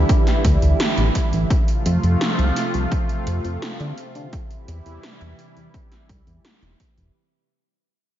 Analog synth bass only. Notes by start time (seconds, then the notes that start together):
0.45 D2
0.62 D2
0.98 A1
1.33 A1
1.86 F2
2.03 F2
2.39 C2
2.74 C2
3.27 F2
3.45 F2
3.80 D3
4.15 D3
4.68 E2
4.86 E2
5.21 E2
5.56 E2
6.09 C2
6.27 E2
6.62 E1
6.98 E1